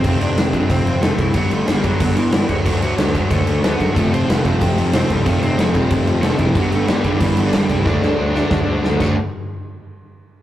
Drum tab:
CC |xxxxxxxx|xxxxxxxx|xxxxxxxx|xxxxxxxx|
SD |--o---o-|--o---o-|--o---o-|--o---o-|
BD |o--oo--o|o--oo--o|o--oo--o|o--oo--o|

CC |xxxxxxxx|xxxxxxxx|-------x|--------|
SD |--o---o-|--o---o-|oo-oo-o-|--------|
BD |o--oo--o|o--oo--o|o---o--o|--------|